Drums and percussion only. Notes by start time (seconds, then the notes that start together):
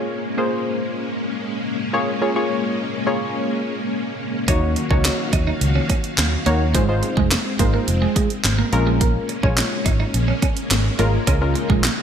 4.48 kick, closed hi-hat
4.76 closed hi-hat
4.91 kick
5.05 snare, clap, closed hi-hat
5.33 kick, closed hi-hat
5.61 closed hi-hat
5.90 kick, closed hi-hat
6.04 closed hi-hat
6.18 snare, clap, closed hi-hat
6.46 closed hi-hat
6.75 kick, closed hi-hat
7.03 closed hi-hat
7.17 kick
7.31 snare, clap, closed hi-hat
7.59 kick, closed hi-hat
7.88 closed hi-hat
8.16 kick, closed hi-hat
8.30 closed hi-hat
8.44 snare, clap, closed hi-hat
8.73 closed hi-hat
9.01 kick, closed hi-hat
9.29 closed hi-hat
9.43 kick
9.57 snare, clap, closed hi-hat
9.86 kick, closed hi-hat
10.14 closed hi-hat
10.42 kick, closed hi-hat
10.57 closed hi-hat
10.71 snare, clap, closed hi-hat
10.99 closed hi-hat
11.27 kick, closed hi-hat
11.55 closed hi-hat
11.70 kick
11.84 snare, clap, closed hi-hat